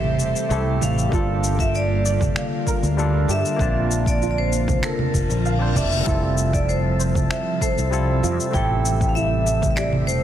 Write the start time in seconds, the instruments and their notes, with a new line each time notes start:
Already playing: fretless electric bass A1, analog synth pad C3 G3 A4 C5, tine electric piano E3 A3 C4 G4 A4, synth pluck G4, vibraphone E5
0.04 low conga
0.20 fretless electric bass E1, shaker
0.36 shaker
0.50 fretless electric bass C2, tine electric piano A3 C4 E4 G4 A4, synth pluck A4, shaker
0.81 fretless electric bass A1, vibraphone F5, low conga, shaker
0.98 shaker
1.09 fretless electric bass G1, analog synth pad D3 A#3, tine electric piano G3 A#3 D4, synth pluck F4, kick
1.13 analog synth pad G3 F4, tine electric piano F4 A4, shaker
1.44 shaker
1.59 vibraphone E5, kick, shaker
1.75 vibraphone D5, shaker
2.05 synth pluck D5, shaker
2.21 kick, low conga, shaker
2.36 vibraphone F5, finger snap, shaker
2.67 synth pluck A#4, kick, shaker
2.83 fretless electric bass D2, shaker
2.97 tine electric piano G3 A#3 D4 F4 A4, shaker
3.28 fretless electric bass G2, synth pluck G4, vibraphone E5, shaker
3.45 shaker
3.56 fretless electric bass A#1, tine electric piano A#3 C4 D4, analog synth pad A5, kick, shaker
3.61 tine electric piano F4 A5
3.91 shaker
4.06 vibraphone D5, kick, shaker
4.22 synth pluck F4, shaker
4.31 vibraphone D5
4.38 vibraphone C5
4.53 shaker
4.68 kick, low conga, shaker
4.83 synth pluck A4, vibraphone A#4, finger snap, reverse cymbal, shaker
4.99 low conga
5.14 fretless electric bass F1, kick, shaker
5.30 fretless electric bass A#1, shaker
5.45 synth pluck F5, shaker
5.59 tine electric piano A#3 C4 D4 F4 C5
5.76 fretless electric bass F1, synth pluck D5, vibraphone E5, kick, low conga, shaker
5.92 shaker
6.02 tine electric piano G3 C4 E4
6.07 fretless electric bass F1, analog synth pad C3 F3 E5, synth pluck E4, tine electric piano F4 A4, kick, shaker
6.38 shaker
6.53 vibraphone D5, kick, shaker
6.69 vibraphone C5, shaker
6.99 synth pluck C5, shaker
7.15 kick, low conga, shaker
7.31 vibraphone E5, finger snap, shaker
7.61 synth pluck A4, vibraphone C5, kick, shaker
7.78 fretless electric bass C2, shaker
7.90 tine electric piano G3 C4 E4 F4 A4, shaker
8.23 fretless electric bass F2, synth pluck F4, shaker
8.40 shaker
8.51 fretless electric bass A1, analog synth pad G3, tine electric piano A3 C4 E4, vibraphone G5, kick, shaker
8.55 tine electric piano G4 A4
8.86 shaker
9.01 kick, shaker
9.09 vibraphone F5
9.15 synth pluck E4, vibraphone E5, shaker
9.47 vibraphone E5, shaker
9.62 kick, low conga, shaker
9.71 vibraphone E5
9.76 synth pluck G4, vibraphone D5, finger snap, shaker
9.93 low conga
10.07 fretless electric bass E1, vibraphone C5, shaker